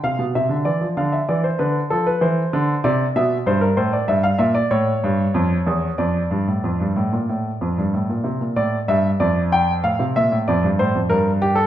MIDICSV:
0, 0, Header, 1, 2, 480
1, 0, Start_track
1, 0, Tempo, 625000
1, 756, Time_signature, 4, 2, 24, 8
1, 3628, Tempo, 641711
1, 6508, Tempo, 630252
1, 8864, End_track
2, 0, Start_track
2, 0, Title_t, "Grand piano"
2, 0, Program_c, 0, 0
2, 26, Note_on_c, 0, 48, 57
2, 29, Note_on_c, 0, 77, 76
2, 144, Note_on_c, 0, 47, 62
2, 145, Note_off_c, 0, 48, 0
2, 179, Note_off_c, 0, 77, 0
2, 265, Note_off_c, 0, 47, 0
2, 270, Note_on_c, 0, 48, 64
2, 271, Note_on_c, 0, 76, 70
2, 379, Note_on_c, 0, 50, 59
2, 388, Note_off_c, 0, 48, 0
2, 422, Note_off_c, 0, 76, 0
2, 499, Note_on_c, 0, 74, 67
2, 500, Note_on_c, 0, 52, 56
2, 503, Note_off_c, 0, 50, 0
2, 621, Note_on_c, 0, 53, 50
2, 624, Note_off_c, 0, 52, 0
2, 653, Note_off_c, 0, 74, 0
2, 745, Note_off_c, 0, 53, 0
2, 745, Note_on_c, 0, 77, 61
2, 746, Note_on_c, 0, 50, 71
2, 864, Note_on_c, 0, 76, 58
2, 867, Note_off_c, 0, 77, 0
2, 898, Note_off_c, 0, 50, 0
2, 986, Note_off_c, 0, 76, 0
2, 987, Note_on_c, 0, 74, 59
2, 989, Note_on_c, 0, 52, 69
2, 1105, Note_on_c, 0, 72, 60
2, 1108, Note_off_c, 0, 74, 0
2, 1139, Note_off_c, 0, 52, 0
2, 1220, Note_on_c, 0, 71, 65
2, 1223, Note_on_c, 0, 50, 72
2, 1226, Note_off_c, 0, 72, 0
2, 1372, Note_off_c, 0, 71, 0
2, 1375, Note_off_c, 0, 50, 0
2, 1462, Note_on_c, 0, 69, 73
2, 1466, Note_on_c, 0, 53, 70
2, 1583, Note_off_c, 0, 69, 0
2, 1587, Note_on_c, 0, 71, 74
2, 1617, Note_off_c, 0, 53, 0
2, 1699, Note_on_c, 0, 52, 78
2, 1704, Note_on_c, 0, 72, 71
2, 1706, Note_off_c, 0, 71, 0
2, 1852, Note_off_c, 0, 52, 0
2, 1945, Note_on_c, 0, 50, 87
2, 2097, Note_off_c, 0, 50, 0
2, 2176, Note_off_c, 0, 72, 0
2, 2182, Note_on_c, 0, 48, 89
2, 2182, Note_on_c, 0, 74, 78
2, 2334, Note_off_c, 0, 48, 0
2, 2334, Note_off_c, 0, 74, 0
2, 2425, Note_on_c, 0, 47, 79
2, 2426, Note_on_c, 0, 76, 79
2, 2576, Note_off_c, 0, 47, 0
2, 2576, Note_off_c, 0, 76, 0
2, 2661, Note_on_c, 0, 43, 81
2, 2663, Note_on_c, 0, 72, 78
2, 2774, Note_on_c, 0, 70, 75
2, 2783, Note_off_c, 0, 72, 0
2, 2812, Note_off_c, 0, 43, 0
2, 2895, Note_on_c, 0, 72, 73
2, 2896, Note_on_c, 0, 45, 83
2, 2898, Note_off_c, 0, 70, 0
2, 3016, Note_on_c, 0, 74, 67
2, 3018, Note_off_c, 0, 72, 0
2, 3048, Note_off_c, 0, 45, 0
2, 3133, Note_on_c, 0, 76, 81
2, 3135, Note_on_c, 0, 43, 73
2, 3139, Note_off_c, 0, 74, 0
2, 3252, Note_on_c, 0, 77, 86
2, 3257, Note_off_c, 0, 76, 0
2, 3288, Note_off_c, 0, 43, 0
2, 3368, Note_on_c, 0, 76, 81
2, 3372, Note_on_c, 0, 46, 83
2, 3376, Note_off_c, 0, 77, 0
2, 3491, Note_on_c, 0, 74, 82
2, 3494, Note_off_c, 0, 76, 0
2, 3526, Note_off_c, 0, 46, 0
2, 3615, Note_on_c, 0, 45, 89
2, 3615, Note_on_c, 0, 73, 80
2, 3616, Note_off_c, 0, 74, 0
2, 3766, Note_off_c, 0, 45, 0
2, 3862, Note_on_c, 0, 43, 84
2, 4011, Note_off_c, 0, 43, 0
2, 4092, Note_on_c, 0, 41, 82
2, 4244, Note_off_c, 0, 41, 0
2, 4332, Note_on_c, 0, 40, 74
2, 4485, Note_off_c, 0, 40, 0
2, 4549, Note_off_c, 0, 73, 0
2, 4568, Note_on_c, 0, 74, 64
2, 4571, Note_on_c, 0, 41, 67
2, 4726, Note_off_c, 0, 41, 0
2, 4813, Note_on_c, 0, 43, 64
2, 4936, Note_on_c, 0, 45, 56
2, 4937, Note_off_c, 0, 43, 0
2, 5059, Note_off_c, 0, 45, 0
2, 5059, Note_on_c, 0, 41, 63
2, 5180, Note_off_c, 0, 41, 0
2, 5182, Note_on_c, 0, 43, 62
2, 5301, Note_on_c, 0, 45, 69
2, 5302, Note_off_c, 0, 43, 0
2, 5422, Note_off_c, 0, 45, 0
2, 5425, Note_on_c, 0, 46, 60
2, 5544, Note_off_c, 0, 46, 0
2, 5548, Note_on_c, 0, 45, 58
2, 5698, Note_off_c, 0, 45, 0
2, 5789, Note_on_c, 0, 41, 61
2, 5906, Note_off_c, 0, 41, 0
2, 5915, Note_on_c, 0, 43, 60
2, 6029, Note_off_c, 0, 43, 0
2, 6029, Note_on_c, 0, 45, 60
2, 6146, Note_off_c, 0, 45, 0
2, 6148, Note_on_c, 0, 46, 58
2, 6232, Note_off_c, 0, 74, 0
2, 6257, Note_on_c, 0, 48, 61
2, 6265, Note_off_c, 0, 46, 0
2, 6379, Note_off_c, 0, 48, 0
2, 6383, Note_on_c, 0, 46, 50
2, 6499, Note_on_c, 0, 45, 69
2, 6500, Note_on_c, 0, 74, 79
2, 6502, Note_off_c, 0, 46, 0
2, 6652, Note_off_c, 0, 45, 0
2, 6653, Note_off_c, 0, 74, 0
2, 6742, Note_on_c, 0, 43, 75
2, 6743, Note_on_c, 0, 76, 84
2, 6895, Note_off_c, 0, 43, 0
2, 6895, Note_off_c, 0, 76, 0
2, 6984, Note_on_c, 0, 41, 71
2, 6984, Note_on_c, 0, 74, 81
2, 7136, Note_off_c, 0, 74, 0
2, 7232, Note_on_c, 0, 79, 89
2, 7382, Note_off_c, 0, 79, 0
2, 7455, Note_off_c, 0, 41, 0
2, 7468, Note_on_c, 0, 45, 63
2, 7469, Note_on_c, 0, 77, 81
2, 7588, Note_off_c, 0, 45, 0
2, 7588, Note_on_c, 0, 48, 69
2, 7620, Note_off_c, 0, 77, 0
2, 7708, Note_off_c, 0, 48, 0
2, 7716, Note_on_c, 0, 76, 92
2, 7721, Note_on_c, 0, 46, 67
2, 7835, Note_off_c, 0, 46, 0
2, 7837, Note_on_c, 0, 45, 69
2, 7865, Note_off_c, 0, 76, 0
2, 7953, Note_off_c, 0, 45, 0
2, 7957, Note_on_c, 0, 74, 76
2, 7963, Note_on_c, 0, 41, 76
2, 8076, Note_off_c, 0, 41, 0
2, 8078, Note_on_c, 0, 43, 66
2, 8105, Note_off_c, 0, 74, 0
2, 8192, Note_off_c, 0, 43, 0
2, 8197, Note_on_c, 0, 72, 83
2, 8198, Note_on_c, 0, 45, 71
2, 8312, Note_off_c, 0, 45, 0
2, 8318, Note_on_c, 0, 41, 53
2, 8344, Note_off_c, 0, 72, 0
2, 8428, Note_on_c, 0, 70, 88
2, 8431, Note_off_c, 0, 41, 0
2, 8432, Note_on_c, 0, 43, 71
2, 8577, Note_off_c, 0, 70, 0
2, 8673, Note_on_c, 0, 67, 91
2, 8777, Note_on_c, 0, 69, 85
2, 8787, Note_off_c, 0, 67, 0
2, 8864, Note_off_c, 0, 43, 0
2, 8864, Note_off_c, 0, 69, 0
2, 8864, End_track
0, 0, End_of_file